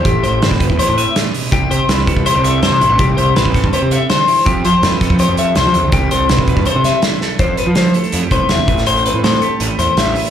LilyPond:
<<
  \new Staff \with { instrumentName = "Clean electric guitar" } { \time 4/4 \key c \major \tempo 4 = 163 g'8 c''8 b'4 c''8 e''8 r4 | g'8 c''8 b'4 c''8 e''8 c''4 | g'8 c''8 b'4 c''8 e''8 c''4 | g'8 c''8 b'4 c''8 e''8 c''4 |
g'8 c''8 b'4 c''8 e''8 r4 | c''8 b'8 c''8 a'4 c''8 e''4 | c''8 b'8 c''8 a'4 c''8 e''4 | }
  \new Staff \with { instrumentName = "Clean electric guitar" } { \time 4/4 \key c \major << { r8 g'8 c'8 b'8 e'16 g'16 b'4. | r8 g'8 e'8 a'8 e'16 g'16 a'8 e'8 e'16 g'16 | r8 g'8 e'8 a'8 g'8 a'4. | r8 e'16 g'16 e'8 a'8 g'8 a'4. |
r8 a'8 e'8 b'8 a'8 b'8 e'8 a'8 | g'16 a'8. e'4 e'16 g'16 b'4 b'8~ | b'8 c'4 g'8 b'4 g'8 b'8 | } \\ { a,2. a,8 b,8 | c1 | c2. d8 e8 | f2. e8 d8 |
c1 | f4. a4. c8 a,8~ | a,4 a4. e4 a,8 | } >> }
  \new Staff \with { instrumentName = "Picked electric bass" } { \clef bass \time 4/4 \key c \major a,,8 a,,8 g,,8. e,16 r16 a,8 r4 r16 | c,8 c16 r16 c,8. c,8 c,8. g,16 c16 a,,16 a,,16 | c,8 c,8 a,,8. g,16 r16 c8 r4 r16 | f,8 f16 r16 f,8. f,8 f,8. c,16 f16 e,16 des,16 |
c,8 c,8 b,,8. g,16 r16 c8 r4 r16 | f,8 r16 f16 f8 r8 f,16 r16 c,16 r16 e,16 r16 a,,8~ | a,,8. a,16 a,8 r8 a,,16 r16 e,16 r16 a,,8 r8 | }
  \new DrumStaff \with { instrumentName = "Drums" } \drummode { \time 4/4 <hh bd>8 hh8 <hh sn>16 <bd sn>16 <hh bd>16 bd16 hh8 hh8 <hh sn>8 hho8 | <hh bd>8 hh8 <hh sn>8 <hh bd>16 bd16 hh8 hh8 <hh sn>8 hh8 | <hh bd>8 hh8 <hh sn>16 bd16 <hh bd sn>16 bd16 hh8 hh8 <hh sn>8 hho8 | <hh bd>8 hh8 <hh sn>8 <hh bd sn>16 bd16 hh8 hh8 <hh sn>8 hh8 |
<hh bd>8 hh8 <hh sn>16 bd16 <hh bd>16 bd16 hh8 <hh sn>8 <hh sn>8 sn8 | <hh bd>8 hh8 <hh sn>8 hh16 hh16 hh8 <hh bd>8 <hh sn>8 <hh bd>16 <hh sn>16 | hh16 hh16 hh8 <hh sn>8 hh8 hh8 hh8 <hh sn>8 hho16 hh16 | }
>>